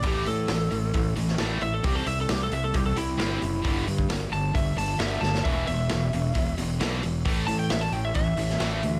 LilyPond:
<<
  \new Staff \with { instrumentName = "Lead electric guitar" } { \time 4/4 \key a \dorian \tempo 4 = 133 g'8 a'2 r4 e''16 a'16 | g'16 a'16 e''16 a'16 g'16 a'16 e''16 a'16 g'16 a'16 e'4.~ | e'8 r4 a''8 e''8 a''8 e''8 a''8 | e''8 e''2 r4. |
r8 a''16 g''16 e''16 a''16 g''16 e''16 e''2 | }
  \new Staff \with { instrumentName = "Distorted electric guitar" } { \clef bass \time 4/4 \key a \dorian <a, e a>8 <a, e>8 <a, e>8 <a, e>8 <a, e>8 <a, e>8 <a, e a>8 <a, e>8 | <c g c'>8 <c g>8 <c g>8 <c g>8 <c g>8 <c g>8 <c g c'>8 <c g>8 | <g, d g>8 <g, d>8 <g, d>8 <g, d>8 <g, d>8 <g, d>8 <g, d g>8 <g, d>8 | <e, b, e>8 <e, b,>8 <e, b,>8 <e, b,>8 <e, b,>8 <e, b,>8 <e, b, e>8 <e, b,>8 |
<a, e a>8 <a, e>8 <a, e>8 <a, e>8 <a, e>8 <a, e>8 <a, e a>8 <a, e>8 | }
  \new Staff \with { instrumentName = "Overdriven electric guitar" } { \clef bass \time 4/4 \key a \dorian <a, e a>8 <a, e>8 <a, e>8 <a, e>8 <a, e>8 <a, e>8 <a, e a>8 <a, e>8 | <c g c'>8 <c g>8 <c g>8 <c g>8 <c g>8 <c g>8 <c g c'>8 <c g>8 | <g, d g>8 <g, d>8 <g, d>8 <g, d>8 <g, d>8 <g, d>8 <g, d g>8 <g, d>8 | <e, b, e>8 <e, b,>8 <e, b,>8 <e, b,>8 <e, b,>8 <e, b,>8 <e, b, e>8 <e, b,>8 |
<a, e a>8 <a, e>8 <a, e>8 <a, e>8 <a, e>8 <a, e>8 <a, e a>8 <a, e>8 | }
  \new Staff \with { instrumentName = "Fingered electric bass" } { \clef bass \time 4/4 \key a \dorian a,,8 a,8 a,,8 a,,8 a,,8 a,,8 a,,8 a,,8 | c,8 c,8 c,8 c,8 c,8 c,8 g,,8 fis,,8 | g,,8 g,8 g,,8 g,,8 g,,8 g,,8 g,,8 g,,8 | e,,8 e,,8 e,,8 e,,8 e,,8 e,,8 b,,8 e,,8 |
a,,8 a,8 a,,8 a,,8 a,,8 a,,8 a,,8 d,8 | }
  \new DrumStaff \with { instrumentName = "Drums" } \drummode { \time 4/4 <hho bd>8 hho8 <hho sn>8 hho8 <hho bd>8 hho16 sn16 <hho sn>8 hho8 | <hho bd>8 hho8 <hho sn>8 hho8 <hho bd>8 hho8 <hho sn>8 hho8 | <hho bd>8 hho16 bd16 <hho sn>8 hho8 <hho bd>8 hho8 <hho sn>8 sn16 sn16 | <hho bd>8 hho8 <hho sn>8 hho8 <hho bd>8 hho8 <hho sn>8 hho8 |
<hho bd>8 hho8 <hho sn>8 hho8 <hho bd>8 hho16 sn16 <hho sn>8 hho8 | }
>>